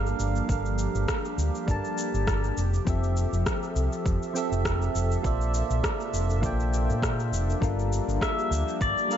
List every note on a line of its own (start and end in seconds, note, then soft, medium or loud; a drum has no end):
0.00 0.11 G1 medium
0.00 2.53 F3 medium
0.00 0.48 G3 medium
0.00 2.54 A#3 medium
0.00 0.49 D4 medium
0.00 2.53 D4 medium
0.00 5.21 G4 medium
0.00 0.50 A4 medium
0.00 0.51 A#4 medium
0.00 0.52 F5 loud
0.07 shaker soft
0.19 0.39 G1 medium
0.19 shaker medium
0.36 shaker soft
0.48 0.85 G1 medium
0.48 1.64 G3 medium
0.48 1.65 D4 medium
0.48 1.65 A4 medium
0.48 1.66 A#4 medium
0.48 kick loud
0.48 shaker soft
0.52 1.66 F5 medium
0.66 shaker soft
0.79 shaker medium
0.95 1.04 G1 medium
0.95 shaker soft
1.08 kick loud
1.08 cross-stick loud
1.08 shaker soft
1.25 shaker soft
1.38 1.48 D2 medium
1.38 shaker medium
1.55 shaker soft
1.66 1.78 G1 medium
1.66 2.55 G3 medium
1.66 2.55 D4 medium
1.66 2.56 A4 medium
1.66 2.57 A#4 medium
1.66 kick medium
1.66 shaker soft
1.71 2.57 A5 medium
1.85 shaker soft
1.98 shaker medium
2.14 2.49 G1 medium
2.14 shaker soft
2.27 kick loud
2.27 cross-stick medium
2.27 shaker soft
2.44 shaker soft
2.57 2.77 F1 medium
2.57 5.22 F3 medium
2.57 7.58 A4 medium
2.57 7.58 E5 medium
2.57 shaker medium
2.74 shaker soft
2.85 3.23 F1 loud
2.85 4.31 F3 medium
2.85 4.32 C4 medium
2.85 4.32 G4 medium
2.85 4.33 A4 medium
2.85 kick medium
2.85 shaker soft
2.89 4.34 E5 medium
3.04 shaker soft
3.17 shaker medium
3.33 3.41 F1 medium
3.33 shaker soft
3.46 kick loud
3.46 cross-stick medium
3.46 shaker soft
3.63 shaker soft
3.76 3.86 C2 medium
3.76 shaker medium
3.93 shaker soft
4.06 4.16 F1 medium
4.06 kick loud
4.06 shaker soft
4.23 shaker soft
4.33 5.20 F3 medium
4.33 5.21 C4 medium
4.33 5.22 G4 medium
4.33 5.22 A4 medium
4.33 shaker medium
4.38 5.23 E5 medium
4.52 4.87 F1 medium
4.52 shaker soft
4.65 kick loud
4.65 cross-stick medium
4.65 shaker soft
4.82 shaker soft
4.95 5.15 F1 medium
4.95 shaker medium
5.12 shaker soft
5.22 5.61 A#1 loud
5.22 7.60 C3 medium
5.22 6.39 A#3 medium
5.22 9.17 D4 medium
5.22 6.40 F4 medium
5.22 6.40 A4 medium
5.22 6.40 C5 medium
5.22 6.41 D5 medium
5.22 kick medium
5.22 shaker soft
5.27 6.41 E5 medium
5.41 shaker soft
5.54 shaker medium
5.70 5.79 A#1 medium
5.70 shaker soft
5.84 kick loud
5.84 cross-stick medium
5.84 shaker soft
6.00 shaker soft
6.13 6.43 F1 medium
6.13 shaker medium
6.30 shaker soft
6.41 6.91 A#1 medium
6.41 7.58 A#3 medium
6.41 7.58 F4 medium
6.41 7.59 A4 medium
6.41 7.59 C5 medium
6.41 7.60 D5 medium
6.41 kick loud
6.41 shaker soft
6.46 7.60 G5 medium
6.60 shaker soft
6.74 shaker medium
6.89 7.34 A#2 medium
6.89 shaker soft
7.02 kick loud
7.02 cross-stick medium
7.02 shaker soft
7.20 shaker soft
7.32 7.52 F1 medium
7.32 shaker medium
7.50 shaker soft
7.60 7.98 G1 loud
7.60 9.17 F3 medium
7.60 9.06 G3 medium
7.60 9.17 A#3 medium
7.60 9.07 D4 medium
7.60 9.17 G4 medium
7.60 9.07 A4 medium
7.60 9.08 A#4 medium
7.60 kick medium
7.60 shaker soft
7.64 9.09 F4 medium
7.79 shaker soft
7.93 shaker medium
8.08 8.17 G1 medium
8.08 shaker soft
8.21 8.81 E5 medium
8.21 kick loud
8.21 cross-stick loud
8.21 shaker soft
8.39 shaker soft
8.51 8.61 D2 medium
8.51 shaker medium
8.68 shaker soft
8.81 8.91 G1 medium
8.81 9.17 D5 loud
8.81 kick medium
8.81 shaker soft
8.98 shaker soft
9.08 9.17 G3 medium
9.08 9.17 D4 medium
9.08 9.17 A4 medium
9.08 9.17 A#4 medium
9.08 shaker medium
9.13 9.17 F5 medium